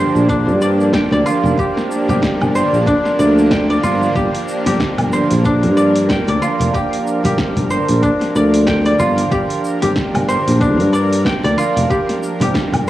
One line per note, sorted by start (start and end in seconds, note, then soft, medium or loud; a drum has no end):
0.00 12.90 F3 medium
0.00 12.90 A#3 medium
0.00 0.29 D4 medium
0.00 12.90 D4 medium
0.00 1.19 F4 medium
0.00 1.58 G4 medium
0.00 12.90 G4 medium
0.00 12.90 A#4 medium
0.00 1.94 C5 medium
0.00 0.38 D5 medium
0.15 0.48 A#1 medium
0.15 shaker soft
0.29 2.87 D4 medium
0.29 kick loud
0.29 shaker soft
0.47 1.02 G2 medium
0.47 shaker soft
0.60 1.12 D5 medium
0.60 muted conga soft
0.60 shaker medium
0.81 shaker soft
0.93 2.49 G5 medium
0.93 kick loud
0.93 snare loud
0.93 shaker soft
1.11 1.21 D2 medium
1.11 2.97 D5 medium
1.11 muted conga soft
1.11 shaker soft
1.25 3.78 F4 medium
1.25 high conga soft
1.25 shaker medium
1.43 1.53 F1 medium
1.43 shaker soft
1.57 2.09 G4 medium
1.57 kick loud
1.57 shaker soft
1.77 snare soft
1.77 shaker soft
1.91 shaker medium
2.08 2.18 G1 medium
2.08 4.15 G4 medium
2.08 muted conga soft
2.08 high conga medium
2.08 low conga medium
2.08 shaker soft
2.22 kick loud
2.22 snare medium
2.22 shaker soft
2.41 2.61 G1 medium
2.41 high conga medium
2.41 low conga medium
2.41 low woodblock medium
2.41 shaker soft
2.55 4.53 C5 medium
2.55 shaker medium
2.73 2.93 A#1 medium
2.73 shaker soft
2.86 5.45 D4 medium
2.86 kick loud
2.86 shaker soft
3.05 snare soft
3.05 shaker soft
3.19 3.76 D2 medium
3.19 3.70 D5 medium
3.19 shaker medium
3.38 shaker soft
3.51 5.06 G5 medium
3.51 kick loud
3.51 snare medium
3.51 shaker soft
3.70 5.55 D5 medium
3.70 shaker soft
3.83 4.07 G1 medium
3.83 6.36 F4 medium
3.83 muted conga soft
3.83 shaker medium
4.01 muted conga soft
4.01 shaker soft
4.15 4.28 G1 medium
4.15 4.66 G4 medium
4.15 kick loud
4.15 shaker soft
4.35 open hi-hat soft
4.35 shaker soft
4.49 shaker medium
4.66 4.76 G1 medium
4.66 6.74 G4 medium
4.66 open hi-hat soft
4.66 high conga medium
4.66 shaker soft
4.80 kick loud
4.80 snare medium
4.80 shaker soft
4.97 5.19 G1 medium
4.97 open hi-hat soft
4.97 high conga medium
4.97 low conga medium
4.97 low woodblock medium
4.97 shaker soft
5.13 7.11 C5 medium
5.13 shaker medium
5.31 5.65 A#1 medium
5.31 open hi-hat medium
5.31 shaker soft
5.44 8.02 D4 medium
5.44 kick medium
5.44 shaker soft
5.63 6.18 G2 medium
5.63 open hi-hat soft
5.63 shaker soft
5.75 6.28 D5 medium
5.75 muted conga soft
5.75 shaker medium
5.96 open hi-hat medium
5.96 shaker soft
6.09 7.65 G5 medium
6.09 kick loud
6.09 snare medium
6.09 shaker soft
6.27 6.37 D2 medium
6.27 8.13 D5 medium
6.27 open hi-hat soft
6.27 muted conga soft
6.27 shaker soft
6.41 8.94 F4 medium
6.41 high conga soft
6.41 shaker medium
6.59 6.69 F1 medium
6.59 open hi-hat soft
6.59 shaker soft
6.73 7.25 G4 medium
6.73 kick medium
6.73 shaker soft
6.93 open hi-hat soft
6.93 shaker soft
7.07 shaker medium
7.24 7.34 G1 medium
7.24 9.31 G4 medium
7.24 open hi-hat medium
7.24 muted conga soft
7.24 high conga medium
7.24 low conga medium
7.24 shaker soft
7.38 kick medium
7.38 snare medium
7.38 shaker soft
7.56 7.77 G1 medium
7.56 open hi-hat soft
7.56 high conga medium
7.56 low conga medium
7.56 shaker soft
7.70 9.68 C5 medium
7.70 shaker medium
7.89 8.09 A#1 medium
7.89 open hi-hat medium
7.89 shaker soft
8.02 10.61 D4 medium
8.02 kick medium
8.02 shaker soft
8.21 snare soft
8.21 open hi-hat soft
8.21 shaker soft
8.35 8.93 D2 medium
8.35 8.85 D5 medium
8.35 shaker medium
8.54 open hi-hat medium
8.54 shaker soft
8.67 10.23 G5 medium
8.67 kick medium
8.67 snare medium
8.67 shaker soft
8.86 10.70 D5 medium
8.86 open hi-hat soft
8.86 shaker soft
8.99 9.23 G1 medium
8.99 11.52 F4 medium
8.99 muted conga soft
8.99 shaker medium
9.17 open hi-hat medium
9.17 muted conga soft
9.17 shaker soft
9.31 9.44 G1 medium
9.31 9.82 G4 medium
9.31 kick loud
9.31 shaker soft
9.50 open hi-hat soft
9.50 shaker soft
9.65 shaker medium
9.82 9.92 G1 medium
9.82 11.90 G4 medium
9.82 open hi-hat medium
9.82 high conga medium
9.82 shaker soft
9.96 kick loud
9.96 snare medium
9.96 shaker soft
10.14 10.35 G1 medium
10.14 open hi-hat soft
10.14 high conga medium
10.14 low conga medium
10.14 low woodblock medium
10.14 shaker soft
10.29 12.26 C5 medium
10.29 shaker medium
10.47 10.80 A#1 medium
10.47 open hi-hat medium
10.47 shaker soft
10.61 12.90 D4 medium
10.61 kick medium
10.61 shaker soft
10.80 11.34 G2 medium
10.80 open hi-hat soft
10.80 shaker soft
10.93 11.44 D5 medium
10.93 muted conga soft
10.93 shaker medium
11.13 open hi-hat medium
11.13 shaker soft
11.25 12.81 G5 medium
11.25 kick medium
11.25 snare medium
11.25 shaker soft
11.43 11.53 D2 loud
11.43 12.90 D5 medium
11.43 open hi-hat soft
11.43 muted conga medium
11.43 shaker soft
11.57 12.90 F4 medium
11.57 high conga soft
11.57 shaker medium
11.76 11.85 F1 medium
11.76 open hi-hat medium
11.76 shaker soft
11.90 12.41 G4 medium
11.90 kick medium
11.90 shaker soft
12.09 snare soft
12.09 open hi-hat soft
12.09 shaker soft
12.23 shaker medium
12.40 12.50 G1 medium
12.40 12.90 G4 medium
12.40 open hi-hat medium
12.40 muted conga soft
12.40 high conga medium
12.40 low conga medium
12.40 shaker soft
12.54 kick loud
12.54 snare loud
12.54 shaker soft
12.72 12.90 G1 medium
12.72 open hi-hat soft
12.72 high conga medium
12.72 low conga medium
12.72 low woodblock medium
12.72 shaker soft